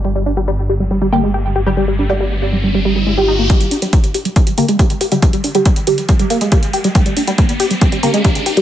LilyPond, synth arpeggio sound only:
\new Staff \with { instrumentName = "Synth arpeggio sound" } { \clef bass \time 4/4 \key g \phrygian \tempo 4 = 139 g16 g16 d'16 g16 g16 r16 g'16 g16 g16 g16 bes16 aes16 g'16 r16 g'16 g16 | g16 g16 d'16 g16 g16 r16 g'16 g16 g16 g16 g16 g16 aes16 r16 ees'16 bes16 | g16 g16 d'16 g16 g16 r16 g'16 g16 g16 g16 bes16 aes16 g'16 r16 g'16 g16 | g16 g16 d'16 g16 g16 r16 g'16 g16 g16 g16 bes16 aes16 g'16 r16 g'16 g16 |
g16 g16 d'16 g16 g16 r16 g'16 g16 g16 g16 bes16 aes16 g'16 r16 g'16 g16 | }